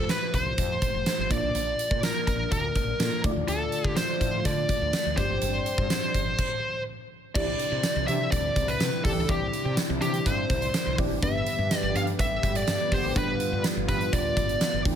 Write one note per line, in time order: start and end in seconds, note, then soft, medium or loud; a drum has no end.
0.00 1.27 A3 medium
0.00 1.27 F4 medium
0.00 1.28 G4 medium
0.00 0.10 A4 medium
0.00 1.28 C5 medium
0.09 0.34 B4 medium
0.09 snare loud
0.09 closed hi-hat medium
0.34 0.52 C2 medium
0.34 1.34 C5 loud
0.34 kick medium
0.34 closed hi-hat medium
0.58 0.76 F2 loud
0.58 kick medium
0.58 closed hi-hat medium
0.82 kick medium
0.82 closed hi-hat medium
0.94 1.03 F1 medium
1.06 snare loud
1.06 closed hi-hat medium
1.19 1.28 G1 medium
1.29 1.40 A#1 loud
1.29 1.99 A#2 medium
1.29 2.96 A#3 medium
1.29 2.96 D4 medium
1.29 2.97 F4 medium
1.29 2.00 D5 loud
1.29 2.97 D5 medium
1.29 kick loud
1.29 closed hi-hat medium
1.43 1.52 B1 medium
1.55 1.73 A#1 medium
1.55 closed hi-hat medium
1.79 closed hi-hat medium
1.91 2.00 A#2 medium
1.91 kick loud
2.03 2.27 A#4 medium
2.03 snare loud
2.03 closed hi-hat medium
2.03 tambourine medium
2.27 2.46 A#1 medium
2.27 2.51 A#4 medium
2.27 kick medium
2.27 closed hi-hat medium
2.52 2.70 D2 loud
2.52 3.20 A#4 medium
2.52 kick medium
2.52 closed hi-hat medium
2.75 2.94 A#1 medium
2.75 kick medium
2.75 closed hi-hat medium
3.00 3.09 A#2 loud
3.00 3.24 A#3 medium
3.00 3.23 D4 soft
3.00 3.25 F4 soft
3.00 3.25 A4 medium
3.00 snare loud
3.00 closed hi-hat medium
3.00 tambourine medium
3.24 3.33 D2 loud
3.24 3.93 D3 medium
3.24 5.13 A3 medium
3.24 5.14 D4 medium
3.24 3.30 E4 medium
3.24 5.15 D5 medium
3.24 kick loud
3.24 closed hi-hat medium
3.31 5.17 F4 medium
3.36 3.45 D#2 medium
3.48 3.66 D2 loud
3.48 6.36 D3 medium
3.48 5.16 F3 medium
3.48 5.16 A3 medium
3.48 5.16 F4 medium
3.48 3.96 A4 medium
3.48 closed hi-hat medium
3.72 closed hi-hat medium
3.84 3.94 D3 medium
3.84 kick loud
3.96 4.46 C5 loud
3.96 snare loud
3.96 closed hi-hat medium
3.96 tambourine medium
4.21 4.39 A2 loud
4.21 kick medium
4.21 closed hi-hat medium
4.45 4.63 D3 loud
4.45 5.20 D5 loud
4.45 kick medium
4.45 closed hi-hat medium
4.69 kick medium
4.69 closed hi-hat medium
4.82 4.91 D2 medium
4.93 snare loud
4.93 closed hi-hat medium
4.93 tambourine medium
5.06 5.15 D2 medium
5.17 5.27 G1 loud
5.17 5.86 G2 medium
5.17 6.37 G3 medium
5.17 6.36 C4 medium
5.17 6.37 C4 medium
5.17 6.36 D4 medium
5.17 6.37 G4 medium
5.17 6.83 C5 medium
5.17 6.37 D5 medium
5.17 kick loud
5.17 closed hi-hat medium
5.30 5.39 G#1 medium
5.42 5.60 G1 medium
5.42 closed hi-hat medium
5.66 closed hi-hat medium
5.78 5.87 G2 medium
5.78 kick loud
5.90 snare loud
5.90 closed hi-hat medium
5.90 tambourine medium
6.14 6.33 G1 medium
6.14 kick medium
6.14 closed hi-hat medium
6.39 kick loud
6.39 crash medium
7.34 7.54 C2 loud
7.34 8.04 C3 medium
7.34 11.18 D3 medium
7.34 7.46 E3 medium
7.34 14.96 G3 medium
7.34 9.25 C4 medium
7.34 11.19 C4 medium
7.34 9.25 D4 medium
7.34 7.46 D4 medium
7.34 11.18 E4 medium
7.34 9.25 E4 medium
7.34 7.46 G4 medium
7.34 9.25 G4 medium
7.34 8.07 D5 loud
7.34 9.26 D5 medium
7.34 kick loud
7.34 crash loud
7.59 closed hi-hat medium
7.72 7.81 C3 loud
7.83 snare loud
7.83 closed hi-hat medium
7.83 tambourine medium
7.96 8.05 C2 loud
8.07 8.26 C3 loud
8.07 8.18 E3 medium
8.07 8.18 D4 medium
8.07 8.18 G4 loud
8.07 8.31 E5 loud
8.07 closed hi-hat medium
8.31 8.50 D2 medium
8.31 8.69 D5 loud
8.31 kick medium
8.31 closed hi-hat loud
8.56 8.74 C2 loud
8.56 kick medium
8.56 closed hi-hat medium
8.68 9.04 B4 loud
8.68 closed hi-hat medium
8.80 8.90 C3 loud
8.80 snare loud
8.80 closed hi-hat medium
8.80 tambourine medium
9.04 9.14 C2 loud
9.04 9.25 E3 medium
9.04 9.25 D4 medium
9.04 9.26 G4 loud
9.04 9.29 A4 medium
9.04 kick medium
9.04 open hi-hat medium
9.17 9.26 C#2 medium
9.28 9.47 C2 loud
9.28 9.98 C3 medium
9.28 9.39 E3 medium
9.28 10.94 C4 medium
9.28 10.95 D4 medium
9.28 9.39 D4 medium
9.28 10.95 E4 medium
9.28 9.39 G4 medium
9.28 9.74 G4 medium
9.28 10.95 G4 medium
9.28 10.96 D5 medium
9.28 kick loud
9.28 closed hi-hat medium
9.53 closed hi-hat medium
9.65 9.74 C3 loud
9.77 snare loud
9.77 closed hi-hat medium
9.77 tambourine medium
9.90 9.99 C2 loud
10.01 10.20 C3 loud
10.01 10.12 E3 medium
10.01 10.12 D4 medium
10.01 10.12 G4 medium
10.01 10.27 G4 medium
10.01 closed hi-hat medium
10.14 closed hi-hat soft
10.26 10.44 G2 loud
10.26 10.95 C5 loud
10.26 kick medium
10.26 closed hi-hat loud
10.50 10.68 C2 loud
10.50 kick medium
10.50 closed hi-hat medium
10.62 closed hi-hat medium
10.74 snare loud
10.74 closed hi-hat medium
10.74 tambourine medium
10.86 10.95 C2 medium
10.98 11.07 A1 medium
10.98 11.19 E3 medium
10.98 11.22 C4 medium
10.98 11.19 D4 medium
10.98 11.20 D4 medium
10.98 11.23 E4 medium
10.98 11.19 G4 loud
10.98 11.21 G4 medium
10.98 11.23 D5 medium
10.98 kick loud
10.98 open hi-hat medium
11.10 11.19 G#1 medium
11.21 11.41 G1 loud
11.21 11.91 G2 medium
11.21 14.96 D3 medium
11.21 11.33 D3 medium
11.21 11.33 B3 medium
11.21 14.96 B3 medium
11.21 13.12 D4 medium
11.21 13.12 G4 medium
11.21 13.14 G4 medium
11.21 11.33 G4 medium
11.21 13.13 B4 medium
11.21 11.78 E5 loud
11.21 kick loud
11.21 closed hi-hat medium
11.46 closed hi-hat medium
11.59 11.68 G2 loud
11.71 snare loud
11.71 closed hi-hat medium
11.71 tambourine medium
11.78 11.96 D5 loud
11.83 11.92 G1 loud
11.95 12.13 G2 loud
11.95 12.05 D3 medium
11.95 12.05 B3 medium
11.95 12.05 G4 loud
11.95 12.03 F5 loud
11.95 closed hi-hat medium
12.07 closed hi-hat soft
12.19 12.37 A1 medium
12.19 12.56 E5 loud
12.19 kick medium
12.19 closed hi-hat medium
12.43 12.62 G1 medium
12.43 kick loud
12.43 closed hi-hat medium
12.55 12.93 D5 loud
12.55 closed hi-hat medium
12.67 12.77 G2 loud
12.67 snare loud
12.67 closed hi-hat medium
12.67 tambourine medium
12.92 13.01 G1 medium
12.92 13.12 D3 loud
12.92 13.12 B3 loud
12.92 13.12 G4 loud
12.92 13.17 C5 medium
12.92 kick loud
12.92 open hi-hat medium
13.04 13.13 G#1 medium
13.15 13.34 G1 loud
13.15 13.85 G2 medium
13.15 13.26 D3 medium
13.15 13.26 B3 medium
13.15 14.96 D4 medium
13.15 14.96 F4 medium
13.15 13.26 G4 loud
13.15 14.96 G4 medium
13.15 14.96 B4 medium
13.15 13.62 B4 medium
13.15 kick loud
13.15 closed hi-hat medium
13.40 closed hi-hat medium
13.53 13.62 G2 medium
13.64 snare loud
13.64 closed hi-hat medium
13.64 tambourine medium
13.77 13.86 G1 medium
13.88 14.07 G2 loud
13.88 13.99 D3 medium
13.88 13.99 B3 medium
13.88 13.99 G4 loud
13.88 14.14 B4 medium
13.88 kick medium
13.88 closed hi-hat medium
14.01 closed hi-hat soft
14.13 14.31 D2 loud
14.13 14.81 D5 loud
14.13 kick medium
14.13 closed hi-hat medium
14.37 14.55 G1 loud
14.37 kick medium
14.37 closed hi-hat medium
14.49 closed hi-hat medium
14.61 snare loud
14.61 closed hi-hat medium
14.61 tambourine medium
14.74 14.83 G1 medium
14.85 14.94 D2 medium
14.85 14.96 E3 loud
14.85 14.96 D4 medium
14.85 14.96 G4 loud
14.85 kick loud
14.85 open hi-hat medium